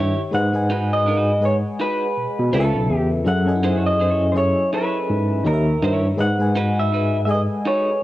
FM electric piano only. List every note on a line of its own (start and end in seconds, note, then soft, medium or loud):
0.00 0.27 D#3 medium
0.00 0.27 D#4 medium
0.00 0.28 G4 medium
0.00 0.28 C#5 medium
0.00 0.29 E5 medium
0.31 0.51 G#3 medium
0.31 0.52 G#4 medium
0.31 0.53 B4 medium
0.31 0.53 D#5 medium
0.31 0.53 F#5 medium
0.53 1.35 G#3 medium
0.53 1.36 G#4 medium
0.53 1.36 B4 medium
0.53 1.36 D#5 medium
0.53 1.37 G#5 medium
1.40 2.51 G#3 medium
1.40 2.51 G#4 medium
1.40 2.52 B4 medium
1.40 2.52 D#5 medium
1.40 2.53 G#5 medium
2.51 3.20 C#3 medium
2.51 3.20 C#4 medium
2.51 3.20 F4 medium
2.51 3.21 A4 medium
2.51 3.21 B4 medium
2.51 2.61 D5 medium
2.60 3.24 E5 medium
3.24 3.45 F#3 medium
3.24 3.45 C#4 medium
3.24 3.46 G#4 medium
3.24 3.46 A4 medium
3.24 3.46 E5 medium
3.46 4.28 F#3 medium
3.46 4.29 C#4 medium
3.46 4.29 A4 medium
3.46 3.53 D#5 medium
3.46 4.29 G#5 medium
3.56 4.33 E4 medium
4.34 5.44 F#3 medium
4.34 5.44 C#4 medium
4.34 5.45 G#4 medium
4.34 5.45 A4 medium
4.34 5.45 E5 medium
5.44 6.12 D#3 medium
5.44 6.13 D#4 medium
5.44 6.13 G4 medium
5.44 6.14 C#5 medium
5.44 5.53 D#5 medium
5.53 6.17 E5 medium
6.17 6.38 G#3 medium
6.17 6.38 G#4 medium
6.17 6.38 B4 medium
6.17 6.39 D#5 medium
6.17 6.39 F#5 medium
6.39 7.21 G#3 medium
6.39 7.21 G#4 medium
6.39 7.22 B4 medium
6.39 7.22 F#5 medium
6.39 7.22 G#5 medium
7.26 8.03 G#3 medium
7.26 8.03 G#4 medium
7.26 7.36 A4 medium
7.26 8.03 D#5 medium
7.26 8.03 G#5 medium
7.34 8.03 B4 medium